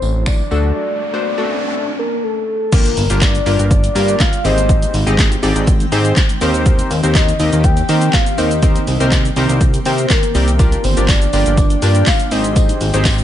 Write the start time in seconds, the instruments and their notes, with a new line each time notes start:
Already playing: soft synth lead C5, riser
0.02 analog synth bass A1, tambourine
0.26 soft synth lead D5, finger snap, kick, tambourine
0.51 analog synth bass D2, synth keys A3 D4 F#4 A4, tambourine
0.76 soft synth lead D5
1.13 synth keys A3 D4 F#4 C5
1.38 synth keys A3 D4 F#4 A4
1.99 soft synth lead A#4
2.23 soft synth lead A4
2.72 ambient pad D3 G3 A#3 F4, synth keys A#3 D4 F4 G4 A#4, soft synth lead A#4, kick, closed hi-hat, crash, impact, shaker
2.85 closed hi-hat, shaker
2.97 analog synth bass G1, open hi-hat, shaker
3.10 analog synth bass G1, synth keys A#3 D4 F4 G4 A#4, closed hi-hat, shaker
3.22 soft synth lead D5, kick, snare, clap, closed hi-hat, shaker
3.35 closed hi-hat, shaker
3.46 analog synth bass G1, synth keys A#3 D4 F4 G4 A#4, open hi-hat, shaker
3.59 analog synth bass G1, closed hi-hat, shaker
3.71 soft synth lead D5, kick, closed hi-hat, shaker
3.84 closed hi-hat, shaker
3.95 analog synth bass G2, synth keys A#3 D4 F4 G4 A#4, open hi-hat, shaker
4.08 closed hi-hat, shaker
4.20 soft synth lead F5, kick, snare, clap, closed hi-hat, shaker
4.33 closed hi-hat, shaker
4.44 analog synth bass G#1, ambient pad D#3 G#3 C4 G5, synth keys C4 D#4 G4 G#4 C5, soft synth lead D#5, open hi-hat, shaker
4.58 closed hi-hat, shaker
4.69 kick, closed hi-hat, shaker
4.82 closed hi-hat, shaker
4.94 analog synth bass G#1, open hi-hat, shaker
5.06 analog synth bass G#1, synth keys C4 D#4 G4 G#4 D#5, closed hi-hat, shaker
5.18 kick, snare, clap, closed hi-hat, shaker
5.32 closed hi-hat, shaker
5.43 analog synth bass G#1, synth keys C4 D#4 G4 G#4 D5, open hi-hat, shaker
5.56 analog synth bass G#1, closed hi-hat, shaker
5.67 kick, closed hi-hat, shaker
5.80 closed hi-hat, shaker
5.92 analog synth bass G#2, synth keys C4 D#4 G4 G#4 C5, open hi-hat, shaker
6.05 closed hi-hat, shaker
6.16 kick, snare, clap, closed hi-hat, shaker
6.29 closed hi-hat, shaker
6.41 analog synth bass D#2, ambient pad A#3 G4, synth keys C4 D#4 G4 A#4 C5, open hi-hat, shaker
6.54 closed hi-hat, shaker
6.66 kick, closed hi-hat, shaker
6.79 closed hi-hat, shaker
6.91 analog synth bass D#2, open hi-hat, shaker
7.03 analog synth bass D#2, synth keys C4 D#4 G4 A#4 C5, closed hi-hat, shaker
7.15 soft synth lead D#5, kick, snare, clap, closed hi-hat, shaker
7.29 closed hi-hat, shaker
7.40 analog synth bass D#2, synth keys C4 D#4 G4 A#4 D#5, open hi-hat, shaker
7.53 analog synth bass D#2, closed hi-hat, shaker
7.64 soft synth lead G5, kick, closed hi-hat, shaker
7.77 closed hi-hat, shaker
7.89 analog synth bass D#3, synth keys C4 D#4 G4 A#4 C5, soft synth lead G5, open hi-hat, shaker
8.01 closed hi-hat, shaker
8.13 soft synth lead F5, kick, snare, clap, closed hi-hat, shaker
8.26 closed hi-hat, shaker
8.38 analog synth bass D#2, synth keys C4 D#4 G4 A#4 C5, soft synth lead D#5, open hi-hat, shaker
8.51 closed hi-hat, shaker
8.62 synth keys C4 D#4 G4 A#4 C5, ambient pad G5, kick, closed hi-hat, shaker
8.76 closed hi-hat, shaker
8.87 analog synth bass C2, open hi-hat, shaker
9.00 analog synth bass C2, synth keys C4 D#4 G4 A#4 C5, closed hi-hat, shaker
9.12 kick, snare, clap, closed hi-hat, shaker
9.25 closed hi-hat, shaker
9.36 analog synth bass C2, synth keys C4 D#4 G4 A#4 C5, open hi-hat, shaker
9.49 analog synth bass C2, closed hi-hat, shaker
9.61 kick, closed hi-hat, shaker
9.74 closed hi-hat, shaker
9.85 analog synth bass C3, synth keys C4 D#4 G4 A#4 C5, soft synth lead C5, open hi-hat, shaker
9.98 closed hi-hat, shaker
10.10 soft synth lead A#4, kick, snare, clap, closed hi-hat, shaker
10.23 closed hi-hat, shaker
10.35 analog synth bass C2, synth keys C4 D#4 G4 A#4 D5, open hi-hat, shaker
10.48 closed hi-hat, shaker
10.59 ambient pad F3 D4, synth keys D4 F4 G4 A#4 D5, soft synth lead A#4, kick, closed hi-hat, tambourine, shaker
10.72 closed hi-hat, shaker
10.84 analog synth bass G1, soft synth lead C5, open hi-hat, tambourine, shaker
10.97 analog synth bass G1, synth keys D4 F4 G4 A#4 D5, closed hi-hat, shaker
11.08 soft synth lead D5, kick, snare, clap, closed hi-hat, tambourine, shaker
11.22 closed hi-hat, shaker
11.33 analog synth bass G1, synth keys D4 F4 G4 A#4 D5, soft synth lead D5, open hi-hat, tambourine, shaker
11.46 analog synth bass G1, closed hi-hat, shaker
11.57 kick, closed hi-hat, tambourine, shaker
11.70 closed hi-hat, shaker
11.82 analog synth bass G2, synth keys D4 F4 G4 A#4 D5, open hi-hat, tambourine, shaker
11.95 closed hi-hat, shaker
12.06 soft synth lead F5, kick, snare, clap, closed hi-hat, tambourine, shaker
12.19 closed hi-hat, shaker
12.31 analog synth bass G#1, ambient pad D#3 G#3 C4, synth keys C4 D#4 G4 G#4 C5, soft synth lead D#5, open hi-hat, tambourine, shaker
12.44 closed hi-hat, shaker
12.56 kick, closed hi-hat, tambourine, shaker
12.69 closed hi-hat, shaker
12.81 analog synth bass G#1, open hi-hat, shaker
12.94 analog synth bass G#1, synth keys C4 D#4 G4 G#4 C5, closed hi-hat, shaker
13.05 kick, snare, clap, closed hi-hat, tambourine, shaker
13.18 closed hi-hat, shaker